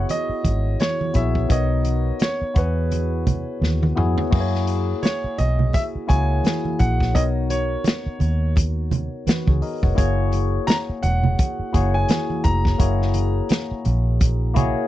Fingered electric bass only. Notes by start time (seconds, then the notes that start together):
0.29 muted fingered electric bass stroke
0.45 G#1
1.15 A#1
1.50 B1
2.42 muted fingered electric bass stroke
2.56 E2
3.61 D#2
3.98 F2
4.33 F#2
5.24 muted fingered electric bass stroke
5.39 B1
5.95 muted fingered electric bass stroke
6.10 C#2
6.80 A#1
7.15 B1
8.06 muted fingered electric bass stroke
8.21 D#2
9.27 muted fingered electric bass stroke
9.48 C#2
9.83 F1
9.98 F#1
10.89 muted fingered electric bass stroke
11.03 E1
11.59 muted fingered electric bass stroke
11.74 F#1
12.45 F1
12.80 F#1
13.71 muted fingered electric bass stroke
13.86 A#1